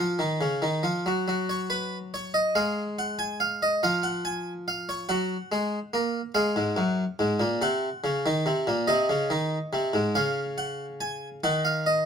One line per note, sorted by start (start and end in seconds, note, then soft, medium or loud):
0.00 0.18 F3 medium
0.00 0.79 C#5 medium
0.19 0.40 D#3 medium
0.41 0.61 C#3 medium
0.62 0.83 D#3 medium
0.83 1.04 F3 medium
1.06 1.26 F#3 medium
1.28 2.52 F#3 medium
1.49 1.70 C#5 medium
1.70 1.96 B4 medium
2.14 2.34 C#5 medium
2.34 2.54 D#5 medium
2.55 3.79 G#3 medium
2.55 2.82 F5 medium
2.99 3.19 F#5 medium
3.19 3.39 G#5 medium
3.40 3.61 F5 medium
3.63 3.82 D#5 medium
3.83 5.06 F3 medium
3.83 4.03 F5 medium
4.03 4.24 F#5 medium
4.25 4.51 G#5 medium
4.68 4.88 F5 medium
4.89 5.09 C#5 medium
5.09 5.35 F#3 medium
5.09 6.31 F#5 medium
5.52 5.78 G#3 medium
5.93 6.19 A#3 medium
6.35 6.55 G#3 medium
6.35 7.57 F5 medium
6.56 6.77 G#2 medium
6.77 7.03 F#2 medium
7.19 7.40 G#2 medium
7.40 7.60 A#2 medium
7.62 7.88 C3 medium
7.62 8.85 F#5 medium
8.04 8.24 C#3 medium
8.26 8.46 D#3 medium
8.46 8.67 C3 medium
8.67 8.88 A#2 medium
8.87 9.09 C3 medium
8.87 10.11 D#5 medium
9.09 9.30 C#3 medium
9.30 9.57 D#3 medium
9.73 9.94 C3 medium
9.94 10.14 G#2 medium
10.15 11.40 C#3 medium
10.15 10.42 F5 medium
10.58 10.84 F#5 medium
11.01 11.27 G#5 medium
11.44 12.05 D#3 medium
11.44 11.64 F#5 medium
11.65 11.85 F5 medium
11.86 12.05 D#5 medium